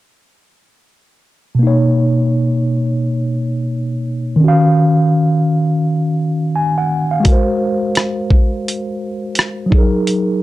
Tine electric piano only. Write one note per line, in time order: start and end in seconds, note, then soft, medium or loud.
1.55 4.36 B2 medium
1.59 4.38 A#3 medium
1.59 4.40 D#4 medium
1.67 4.42 C#5 medium
4.36 7.18 D#3 medium
4.40 7.20 C#4 medium
4.44 7.22 F#4 medium
4.44 6.53 F5 medium
6.56 6.75 G#5 medium
6.78 7.10 F#5 medium
7.11 7.45 F5 medium
7.20 9.66 G#3 medium
7.20 9.68 F#4 medium
7.28 9.70 A#4 medium
7.32 9.72 C5 medium
9.66 10.43 F#3 medium
9.70 10.43 D#4 medium
9.70 10.43 G#4 medium
9.78 10.43 A#4 medium